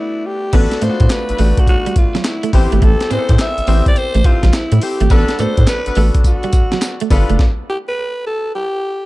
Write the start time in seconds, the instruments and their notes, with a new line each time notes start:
Already playing: alto saxophone E4
0.26 alto saxophone G4
0.53 analog synth bass A1, grand piano A3 B3 D4 F#4, horn section B3 D4 F#4 A4 B4, clean electric guitar B3, alto saxophone A4, kick, closed hi-hat, crash
0.71 muted clean electric guitar stroke, snare, closed hi-hat
0.82 analog synth bass A2, grand piano A3 B3 D4 F4, clean electric guitar A3, alto saxophone C5, closed hi-hat
0.89 grand piano F#4
1.00 analog synth bass A2, kick, closed hi-hat
1.10 alto saxophone B4, snare, clap, closed hi-hat
1.29 analog synth bass A1, horn section B3 D4 F#4 A4 B4, closed hi-hat
1.38 analog synth bass A1, clean electric guitar A3, grand piano A3 B3 D4 F#4, open hi-hat
1.57 alto saxophone F#4, kick, closed hi-hat
1.67 alto saxophone F#4, kick, closed hi-hat
1.86 clean electric guitar G3, closed hi-hat
1.96 alto saxophone F4, muted clean electric guitar stroke, kick, closed hi-hat
2.15 clean electric guitar F#3, snare, closed hi-hat
2.24 alto saxophone E4, snare, clap, closed hi-hat
2.43 clean electric guitar A3, closed hi-hat
2.53 analog synth bass A1, grand piano B3 C4 E4 G4, horn section C4 E4 G4 A4 C5, alto saxophone G4, muted clean electric guitar stroke, kick, open hi-hat
2.72 analog synth bass G#1, clean electric guitar A3, closed hi-hat
2.82 analog synth bass A1, clean electric guitar A3, alto saxophone A4, kick, closed hi-hat
3.00 muted clean electric guitar stroke, snare, closed hi-hat
3.10 analog synth bass A2, grand piano B3 C4 E4 G#4, clean electric guitar C4, alto saxophone C5, closed hi-hat
3.18 grand piano A4
3.29 analog synth bass A2, horn section C4 E4 G4 A4 C5, kick, closed hi-hat
3.39 alto saxophone E5, snare, clap, closed hi-hat
3.58 analog synth bass A1, closed hi-hat
3.67 analog synth bass A1, grand piano B3 C4 E4 G4, clean electric guitar C4, horn section C4 E4 G4 A4 C5, open hi-hat
3.86 alto saxophone D5, kick, closed hi-hat
3.96 alto saxophone C5, closed hi-hat
4.15 analog synth bass A1, clean electric guitar A3, closed hi-hat
4.24 horn section C4 E4 G4 A4 C5, alto saxophone F4, muted clean electric guitar stroke, kick, closed hi-hat
4.43 analog synth bass A1, clean electric guitar G3, kick, snare, closed hi-hat
4.53 alto saxophone E4, snare, clap, closed hi-hat
4.72 analog synth bass A2, clean electric guitar A3, closed hi-hat
4.81 horn section C4 E4 G4 A4 C5, alto saxophone G4, muted clean electric guitar stroke, open hi-hat
5.00 analog synth bass G#1, clean electric guitar A3, closed hi-hat
5.10 analog synth bass A1, grand piano B3 D4 F#4 A4, horn section B3 D4 F#4 A4 B4, clean electric guitar B3, alto saxophone A4, kick, closed hi-hat, tambourine
5.28 muted clean electric guitar stroke, snare, closed hi-hat
5.39 analog synth bass A2, clean electric guitar A3, grand piano B3 D4 F#4 A4, alto saxophone C5, closed hi-hat, tambourine
5.57 analog synth bass A2, kick, closed hi-hat
5.67 alto saxophone B4, snare, clap, closed hi-hat, tambourine
5.86 analog synth bass A1, horn section B3 D4 F#4 A4 B4, closed hi-hat
5.95 analog synth bass A1, clean electric guitar A3, grand piano B3 D4 F#4 A4, open hi-hat
6.14 kick, closed hi-hat
6.24 alto saxophone F#4, kick, closed hi-hat, tambourine
6.43 clean electric guitar G3, closed hi-hat
6.53 muted clean electric guitar stroke, kick, closed hi-hat, tambourine
6.72 clean electric guitar F#3, snare, closed hi-hat
6.81 snare, clap, closed hi-hat, tambourine
7.00 clean electric guitar A3, closed hi-hat
7.10 analog synth bass G1, grand piano B3 D4 F4 A4, horn section B3 D4 F4 G4 B4, muted clean electric guitar stroke, kick, open hi-hat, tambourine
7.30 analog synth bass F#1, clean electric guitar A3, closed hi-hat
7.39 kick, snare
7.70 alto saxophone G4
7.88 alto saxophone B4
8.27 alto saxophone A4
8.55 alto saxophone G4